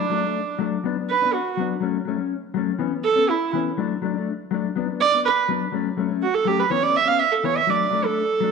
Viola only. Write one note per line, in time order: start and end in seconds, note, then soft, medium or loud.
0.00 0.60 D4 medium
1.10 1.35 B4 medium
1.33 1.58 F#4 medium
3.05 3.31 A4 loud
3.29 3.54 E4 medium
5.00 5.23 D5 loud
5.25 5.39 B4 loud
6.22 6.36 F#4 medium
6.34 6.49 A4 medium
6.47 6.61 G4 medium
6.60 6.72 B4 medium
6.70 6.84 C#5 medium
6.83 6.98 D5 medium
6.96 7.09 E5 loud
7.08 7.20 F5 loud
7.19 7.34 E5 medium
7.32 7.46 A4 medium
7.45 7.59 C#5 medium
7.57 7.71 E5 loud
7.69 8.07 D5 medium
8.05 8.52 A4 medium